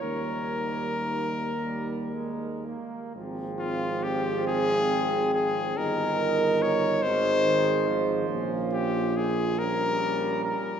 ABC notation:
X:1
M:6/8
L:1/8
Q:3/8=46
K:Ab
V:1 name="Flugelhorn"
B4- B z | z F G A2 A | B2 d c3 | z G A B2 B |]
V:2 name="French horn section"
E4- E z | A6 | B3 A3 | F3 D3 |]
V:3 name="Euphonium"
B,4- B, z | C6 | E6 | D2 z B,3 |]
V:4 name="Trombone" clef=bass
G,3 G, A, B, | F,6 | E,3 E, E, F,- | F,2 z G,3 |]
V:5 name="Tuba" clef=bass
E,,4- E,, z | A,,,6 | G,,,3 A,,,3 | B,,,4- B,,, z |]